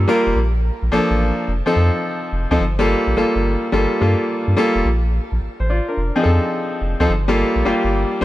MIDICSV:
0, 0, Header, 1, 3, 480
1, 0, Start_track
1, 0, Key_signature, -2, "minor"
1, 0, Tempo, 560748
1, 310, Time_signature, 4, 2, 24, 8
1, 7059, End_track
2, 0, Start_track
2, 0, Title_t, "Grand piano"
2, 0, Program_c, 0, 0
2, 0, Control_c, 0, 64, 127
2, 0, Note_on_c, 0, 55, 90
2, 0, Note_on_c, 0, 58, 81
2, 0, Note_on_c, 0, 65, 83
2, 0, Note_on_c, 0, 69, 105
2, 0, Note_on_c, 0, 72, 110
2, 65, Note_off_c, 0, 55, 0
2, 65, Note_on_c, 0, 55, 100
2, 70, Note_off_c, 0, 58, 0
2, 70, Note_on_c, 0, 58, 95
2, 73, Note_off_c, 0, 65, 0
2, 73, Note_on_c, 0, 65, 89
2, 75, Note_on_c, 0, 70, 120
2, 307, Note_off_c, 0, 55, 0
2, 310, Note_off_c, 0, 58, 0
2, 311, Note_off_c, 0, 65, 0
2, 312, Note_off_c, 0, 70, 0
2, 319, Control_c, 0, 64, 0
2, 324, Note_off_c, 0, 69, 0
2, 327, Note_off_c, 0, 72, 0
2, 467, Control_c, 0, 64, 127
2, 785, Note_on_c, 0, 53, 104
2, 788, Note_on_c, 0, 58, 90
2, 790, Note_on_c, 0, 62, 86
2, 797, Note_on_c, 0, 69, 114
2, 1267, Note_off_c, 0, 53, 0
2, 1269, Note_off_c, 0, 58, 0
2, 1270, Note_off_c, 0, 62, 0
2, 1273, Note_off_c, 0, 69, 0
2, 1283, Control_c, 0, 64, 0
2, 1420, Note_on_c, 0, 53, 94
2, 1425, Note_on_c, 0, 60, 85
2, 1427, Note_on_c, 0, 63, 80
2, 1430, Note_on_c, 0, 69, 109
2, 1438, Control_c, 0, 64, 127
2, 2069, Note_off_c, 0, 53, 0
2, 2071, Note_off_c, 0, 60, 0
2, 2072, Note_off_c, 0, 63, 0
2, 2074, Note_off_c, 0, 69, 0
2, 2148, Note_on_c, 0, 53, 98
2, 2151, Note_on_c, 0, 60, 89
2, 2155, Note_on_c, 0, 63, 85
2, 2158, Note_on_c, 0, 69, 111
2, 2229, Note_off_c, 0, 53, 0
2, 2231, Note_off_c, 0, 60, 0
2, 2233, Note_off_c, 0, 63, 0
2, 2235, Note_off_c, 0, 69, 0
2, 2241, Control_c, 0, 64, 0
2, 2378, Control_c, 0, 64, 127
2, 2386, Note_on_c, 0, 55, 104
2, 2391, Note_on_c, 0, 58, 86
2, 2393, Note_on_c, 0, 65, 90
2, 2398, Note_on_c, 0, 69, 111
2, 2689, Note_off_c, 0, 55, 0
2, 2692, Note_off_c, 0, 58, 0
2, 2693, Note_off_c, 0, 65, 0
2, 2695, Note_off_c, 0, 69, 0
2, 2711, Note_on_c, 0, 55, 91
2, 2713, Note_on_c, 0, 58, 83
2, 2717, Note_on_c, 0, 65, 82
2, 2720, Note_on_c, 0, 69, 102
2, 3165, Note_off_c, 0, 55, 0
2, 3166, Note_off_c, 0, 58, 0
2, 3168, Note_off_c, 0, 65, 0
2, 3169, Note_off_c, 0, 69, 0
2, 3186, Note_on_c, 0, 55, 96
2, 3190, Note_on_c, 0, 58, 82
2, 3193, Note_on_c, 0, 65, 82
2, 3198, Note_on_c, 0, 69, 105
2, 3415, Note_off_c, 0, 55, 0
2, 3417, Note_off_c, 0, 58, 0
2, 3419, Note_off_c, 0, 65, 0
2, 3421, Note_off_c, 0, 69, 0
2, 3431, Note_on_c, 0, 55, 85
2, 3436, Note_on_c, 0, 58, 87
2, 3439, Note_on_c, 0, 65, 85
2, 3443, Note_on_c, 0, 69, 101
2, 3885, Note_off_c, 0, 55, 0
2, 3887, Note_off_c, 0, 58, 0
2, 3889, Note_off_c, 0, 65, 0
2, 3891, Note_off_c, 0, 69, 0
2, 3908, Note_on_c, 0, 55, 101
2, 3911, Note_on_c, 0, 58, 100
2, 3914, Note_on_c, 0, 65, 95
2, 3920, Note_on_c, 0, 69, 115
2, 4149, Note_off_c, 0, 55, 0
2, 4150, Note_off_c, 0, 58, 0
2, 4152, Note_off_c, 0, 65, 0
2, 4155, Note_off_c, 0, 69, 0
2, 4161, Control_c, 0, 64, 0
2, 4296, Control_c, 0, 64, 127
2, 4793, Note_on_c, 0, 72, 65
2, 4868, Note_off_c, 0, 72, 0
2, 4876, Note_on_c, 0, 74, 69
2, 4880, Note_on_c, 0, 65, 63
2, 5024, Note_off_c, 0, 74, 0
2, 5027, Note_off_c, 0, 65, 0
2, 5036, Note_on_c, 0, 70, 67
2, 5040, Note_on_c, 0, 62, 58
2, 5122, Control_c, 0, 64, 0
2, 5261, Note_off_c, 0, 70, 0
2, 5263, Note_off_c, 0, 62, 0
2, 5265, Control_c, 0, 64, 127
2, 5269, Note_on_c, 0, 53, 88
2, 5272, Note_on_c, 0, 60, 90
2, 5276, Note_on_c, 0, 63, 82
2, 5280, Note_on_c, 0, 68, 79
2, 5312, Note_off_c, 0, 68, 0
2, 5336, Note_on_c, 0, 69, 96
2, 5913, Note_off_c, 0, 53, 0
2, 5915, Note_off_c, 0, 60, 0
2, 5917, Note_off_c, 0, 63, 0
2, 5947, Note_off_c, 0, 69, 0
2, 5992, Note_on_c, 0, 53, 95
2, 5994, Note_on_c, 0, 60, 87
2, 5998, Note_on_c, 0, 63, 96
2, 6000, Note_on_c, 0, 69, 105
2, 6071, Note_off_c, 0, 53, 0
2, 6072, Note_off_c, 0, 60, 0
2, 6074, Note_off_c, 0, 63, 0
2, 6076, Note_off_c, 0, 69, 0
2, 6079, Control_c, 0, 64, 0
2, 6212, Control_c, 0, 64, 127
2, 6232, Note_on_c, 0, 55, 101
2, 6235, Note_on_c, 0, 58, 95
2, 6237, Note_on_c, 0, 65, 93
2, 6242, Note_on_c, 0, 69, 113
2, 6532, Note_off_c, 0, 55, 0
2, 6534, Note_off_c, 0, 58, 0
2, 6535, Note_off_c, 0, 65, 0
2, 6537, Note_off_c, 0, 69, 0
2, 6550, Note_on_c, 0, 55, 92
2, 6553, Note_on_c, 0, 58, 89
2, 6556, Note_on_c, 0, 65, 91
2, 6559, Note_on_c, 0, 67, 107
2, 7004, Note_off_c, 0, 55, 0
2, 7006, Note_off_c, 0, 58, 0
2, 7007, Note_off_c, 0, 65, 0
2, 7009, Note_off_c, 0, 67, 0
2, 7028, Note_on_c, 0, 55, 97
2, 7032, Note_on_c, 0, 58, 88
2, 7059, Note_off_c, 0, 55, 0
2, 7059, Note_off_c, 0, 58, 0
2, 7059, End_track
3, 0, Start_track
3, 0, Title_t, "Analog synth bass"
3, 0, Program_c, 1, 38
3, 230, Note_on_c, 1, 29, 92
3, 289, Note_off_c, 1, 29, 0
3, 307, Note_on_c, 1, 34, 110
3, 602, Note_off_c, 1, 34, 0
3, 707, Note_on_c, 1, 34, 98
3, 768, Note_off_c, 1, 34, 0
3, 789, Note_on_c, 1, 33, 54
3, 853, Note_off_c, 1, 33, 0
3, 948, Note_on_c, 1, 33, 91
3, 1125, Note_off_c, 1, 33, 0
3, 1269, Note_on_c, 1, 29, 102
3, 1387, Note_off_c, 1, 29, 0
3, 1509, Note_on_c, 1, 41, 105
3, 1627, Note_off_c, 1, 41, 0
3, 1991, Note_on_c, 1, 29, 93
3, 2108, Note_off_c, 1, 29, 0
3, 2149, Note_on_c, 1, 38, 82
3, 2209, Note_off_c, 1, 38, 0
3, 2231, Note_on_c, 1, 31, 118
3, 2525, Note_off_c, 1, 31, 0
3, 2630, Note_on_c, 1, 34, 94
3, 2689, Note_off_c, 1, 34, 0
3, 2712, Note_on_c, 1, 31, 52
3, 2775, Note_off_c, 1, 31, 0
3, 2874, Note_on_c, 1, 31, 96
3, 3049, Note_off_c, 1, 31, 0
3, 3193, Note_on_c, 1, 31, 99
3, 3309, Note_off_c, 1, 31, 0
3, 3437, Note_on_c, 1, 43, 100
3, 3552, Note_off_c, 1, 43, 0
3, 3833, Note_on_c, 1, 43, 102
3, 3891, Note_off_c, 1, 43, 0
3, 4071, Note_on_c, 1, 29, 92
3, 4130, Note_off_c, 1, 29, 0
3, 4153, Note_on_c, 1, 34, 117
3, 4446, Note_off_c, 1, 34, 0
3, 4556, Note_on_c, 1, 34, 94
3, 4613, Note_off_c, 1, 34, 0
3, 4634, Note_on_c, 1, 33, 56
3, 4697, Note_off_c, 1, 33, 0
3, 4795, Note_on_c, 1, 33, 91
3, 4970, Note_off_c, 1, 33, 0
3, 5114, Note_on_c, 1, 29, 99
3, 5230, Note_off_c, 1, 29, 0
3, 5354, Note_on_c, 1, 41, 106
3, 5470, Note_off_c, 1, 41, 0
3, 5834, Note_on_c, 1, 29, 88
3, 5950, Note_off_c, 1, 29, 0
3, 5994, Note_on_c, 1, 38, 83
3, 6051, Note_off_c, 1, 38, 0
3, 6074, Note_on_c, 1, 31, 115
3, 6367, Note_off_c, 1, 31, 0
3, 6470, Note_on_c, 1, 34, 94
3, 6529, Note_off_c, 1, 34, 0
3, 6553, Note_on_c, 1, 31, 53
3, 6616, Note_off_c, 1, 31, 0
3, 6715, Note_on_c, 1, 31, 89
3, 6890, Note_off_c, 1, 31, 0
3, 7059, End_track
0, 0, End_of_file